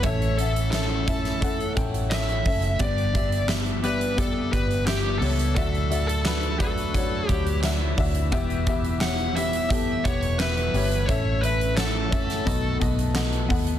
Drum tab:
HH |xxxxx-xxxxxxxxox|xxxxxxxxx-xxx-ox|xxxxxxxxx-xxx-ox|xxxxxxxxx-xxxxox|
CP |----x-------x---|----x-------x---|----x-------x---|----x-------x---|
SD |----o--o----o---|----o-------o---|----o-------o---|----o-------o---|
BD |o-----o-o-o---o-|o-o-----o-o-----|o-----o-o-o---o-|o-o-----o-o-----|

HH |x-xxx-xxx-xxxxox|
CP |----x-------x---|
SD |----o--o----o---|
BD |o-----o-o-o---o-|